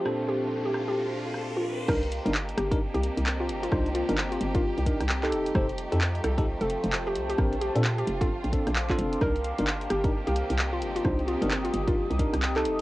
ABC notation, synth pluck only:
X:1
M:4/4
L:1/16
Q:"Swing 16ths" 1/4=131
K:Cdor
V:1 name="Synth pluck"
G z G2 z G z G2 z4 F2 z | B2 z4 G2 z G2 z2 F z F- | F z F2 z F z F2 z4 A2 z | c2 z4 A2 z A2 z2 G z G- |
G z G2 z G z F2 z4 F2 z | B2 z4 G2 z G2 z2 F z F- | F z F2 z F z F2 z4 A2 z |]